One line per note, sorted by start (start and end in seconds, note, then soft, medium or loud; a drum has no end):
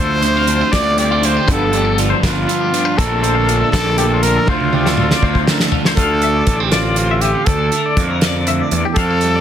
0.00 0.62 D2 loud
0.00 1.48 D2 medium
0.00 0.21 D3 medium
0.00 1.02 F3 medium
0.00 0.21 A3 medium
0.00 0.24 A3 medium
0.00 0.21 D4 medium
0.00 0.49 D4 medium
0.00 0.20 F4 medium
0.00 0.22 A4 medium
0.00 0.75 C5 loud
0.21 0.46 D3 medium
0.21 0.46 A3 medium
0.21 0.37 A3 medium
0.21 0.47 D4 medium
0.21 0.47 F4 medium
0.21 0.35 C5 medium
0.21 closed hi-hat medium
0.36 0.73 C4 soft
0.36 0.61 F5 medium
0.47 0.72 D3 medium
0.47 0.72 A3 medium
0.47 0.72 D4 medium
0.47 0.61 D4 medium
0.47 0.71 F4 medium
0.47 closed hi-hat medium
0.61 1.23 F4 soft
0.61 0.71 E5 medium
0.72 1.37 D2 medium
0.72 0.96 D3 medium
0.72 0.96 A3 medium
0.72 1.45 C4 soft
0.72 0.96 D4 medium
0.72 0.97 F4 medium
0.72 0.97 D5 medium
0.72 0.98 D5 loud
0.72 kick medium
0.72 snare medium
0.72 closed hi-hat medium
0.97 1.22 D3 medium
0.97 1.12 G3 soft
0.97 1.22 A3 medium
0.97 1.22 D4 medium
0.97 1.22 F4 medium
0.97 1.10 G4 medium
0.97 1.27 D5 medium
0.97 closed hi-hat soft
1.11 1.48 A3 soft
1.11 1.35 F4 medium
1.23 1.46 D3 medium
1.23 1.48 A3 medium
1.23 1.47 D4 medium
1.23 1.37 D4 medium
1.23 1.48 F4 medium
1.23 1.49 C5 medium
1.23 closed hi-hat medium
1.35 1.48 F4 soft
1.35 1.48 G4 medium
1.48 2.12 G1 loud
1.48 2.95 G2 medium
1.48 1.72 D3 medium
1.48 1.72 F3 medium
1.48 1.71 B3 medium
1.48 1.71 D4 medium
1.48 1.72 B4 medium
1.48 kick loud
1.48 closed hi-hat medium
1.52 1.95 A4 medium
1.72 1.96 D3 medium
1.72 1.97 F3 medium
1.72 1.97 B3 medium
1.72 1.97 D4 medium
1.72 2.24 D4 medium
1.72 1.85 G4 medium
1.72 closed hi-hat soft
1.85 2.10 A4 medium
1.98 2.23 D3 medium
1.98 2.23 F3 medium
1.98 2.22 B3 medium
1.98 2.22 D4 medium
1.98 3.01 F4 medium
1.98 closed hi-hat medium
2.10 2.22 C5 medium
2.22 2.44 G1 loud
2.22 2.47 D3 medium
2.22 2.46 F3 medium
2.22 2.47 B3 medium
2.22 2.48 D4 medium
2.22 2.74 D4 medium
2.22 2.99 F4 medium
2.22 2.48 B4 medium
2.22 kick medium
2.22 snare medium
2.22 closed hi-hat medium
2.48 2.73 D3 medium
2.48 2.73 F3 medium
2.48 2.72 B3 medium
2.48 2.95 B3 medium
2.48 2.71 D4 medium
2.48 2.59 A4 medium
2.48 closed hi-hat medium
2.60 2.85 G4 medium
2.72 2.97 D3 medium
2.72 2.97 F3 medium
2.72 2.98 B3 medium
2.72 2.97 D4 medium
2.72 3.00 D4 medium
2.72 closed hi-hat medium
2.85 2.97 B4 medium
2.98 3.62 A#1 loud
2.98 4.45 A#2 medium
2.98 3.23 D3 medium
2.98 5.98 D3 soft
2.98 3.22 F3 medium
2.98 3.98 A3 medium
2.98 3.22 A#3 medium
2.98 3.24 C4 medium
2.98 3.21 D4 medium
2.98 3.49 D4 medium
2.98 3.72 A4 medium
2.98 3.22 A4 medium
2.98 kick medium
2.98 closed hi-hat medium
3.22 3.47 D3 medium
3.22 3.48 F3 medium
3.22 3.48 A#3 medium
3.22 3.74 C4 medium
3.22 3.48 D4 medium
3.22 3.35 C5 medium
3.22 closed hi-hat medium
3.35 3.60 F5 medium
3.49 3.73 D3 medium
3.49 3.73 F3 medium
3.49 3.73 A#3 medium
3.49 4.23 D4 medium
3.49 3.72 D4 medium
3.49 closed hi-hat medium
3.60 3.73 E5 medium
3.72 4.37 A#1 medium
3.72 3.97 D3 medium
3.72 3.97 F3 medium
3.72 3.97 A#3 medium
3.72 4.51 C4 medium
3.72 3.98 D4 medium
3.72 3.96 A4 medium
3.72 3.98 D5 medium
3.72 kick medium
3.72 snare loud
3.72 closed hi-hat medium
3.98 4.23 D3 medium
3.98 4.22 F3 medium
3.98 4.73 A3 medium
3.98 4.22 A#3 medium
3.98 4.21 D4 medium
3.98 4.10 G4 medium
3.98 4.24 A4 medium
3.98 closed hi-hat medium
4.11 4.36 F4 medium
4.23 4.46 D3 medium
4.23 4.47 F3 medium
4.23 4.48 A#3 medium
4.23 4.47 D4 medium
4.23 5.73 D4 medium
4.23 4.52 A#4 medium
4.23 closed hi-hat medium
4.36 4.48 A4 medium
4.47 5.97 D2 medium
4.47 5.12 D2 medium
4.47 4.72 D3 medium
4.47 4.72 F3 medium
4.47 4.71 A3 medium
4.47 4.71 D4 medium
4.47 5.49 F4 medium
4.47 4.73 C5 medium
4.47 kick medium
4.47 high tom medium
4.60 high tom soft
4.72 4.96 D3 medium
4.72 4.96 F3 medium
4.72 4.96 A3 medium
4.72 4.87 A3 medium
4.72 4.97 D4 medium
4.72 4.86 G4 medium
4.72 high tom medium
4.86 4.99 C4 soft
4.86 5.10 A4 medium
4.86 snare medium
4.97 5.22 D3 medium
4.97 5.21 F3 medium
4.97 5.21 A3 medium
4.97 5.24 C4 medium
4.97 5.21 D4 medium
4.97 mid tom medium
5.11 5.23 D5 medium
5.11 snare medium
5.22 5.44 D2 medium
5.22 5.46 D3 soft
5.22 5.46 F3 medium
5.22 5.47 A3 medium
5.22 5.96 C4 medium
5.22 5.47 D4 medium
5.22 5.48 C5 medium
5.22 kick medium
5.35 kick medium
5.47 5.72 D3 medium
5.47 5.72 F3 medium
5.47 5.72 A3 medium
5.47 5.95 A3 soft
5.47 5.71 D4 medium
5.47 5.61 A#4 medium
5.47 snare medium
5.60 5.86 A4 medium
5.60 snare medium
5.72 5.98 D3 medium
5.72 5.98 F3 medium
5.72 5.98 A3 medium
5.72 5.97 D4 medium
5.72 5.95 F4 medium
5.72 floor tom medium
5.85 5.98 C5 medium
5.85 snare medium
5.96 6.41 D2 medium
5.96 7.47 D2 medium
5.96 7.24 F4 medium
5.96 6.65 A4 medium
5.96 6.23 F5 medium
5.96 kick medium
5.96 closed hi-hat medium
6.22 6.48 A3 medium
6.22 6.36 E5 medium
6.22 closed hi-hat soft
6.36 6.60 D5 medium
6.47 7.33 A1 medium
6.47 6.60 A3 soft
6.47 kick medium
6.47 closed hi-hat medium
6.60 6.73 C4 soft
6.60 6.72 G4 soft
6.60 6.72 C5 medium
6.71 6.98 C4 soft
6.71 7.23 F4 medium
6.71 6.97 D5 medium
6.71 snare medium
6.71 closed hi-hat medium
6.96 7.45 C4 soft
6.96 7.10 C5 medium
6.96 closed hi-hat medium
7.11 7.35 E5 medium
7.21 7.48 F4 medium
7.21 7.47 G4 medium
7.21 closed hi-hat medium
7.35 7.48 F5 medium
7.45 7.69 D2 medium
7.45 8.48 D2 medium
7.45 8.97 D4 medium
7.45 8.02 A4 medium
7.45 7.73 D5 medium
7.45 kick medium
7.45 closed hi-hat medium
7.72 9.23 A3 soft
7.72 7.85 A#4 medium
7.72 closed hi-hat soft
7.86 8.10 D5 medium
7.97 8.61 F2 medium
7.97 8.96 A#3 soft
7.97 kick medium
7.97 closed hi-hat medium
8.10 8.23 A#4 medium
8.21 8.47 D5 medium
8.21 snare medium
8.21 closed hi-hat medium
8.47 8.73 D2 medium
8.47 8.60 E5 medium
8.47 closed hi-hat medium
8.60 8.85 D5 medium
8.71 8.83 E2 medium
8.71 8.98 E2 medium
8.71 closed hi-hat medium
8.85 8.98 G4 medium
8.95 9.40 F2 medium
8.95 9.41 F2 medium
8.95 9.41 A4 medium
8.95 9.23 F5 medium
8.95 kick medium
8.95 closed hi-hat medium
8.99 9.11 D4 medium
9.11 9.41 F4 medium
9.21 9.41 G3 medium
9.21 9.35 E5 medium
9.21 closed hi-hat soft
9.35 9.41 D5 medium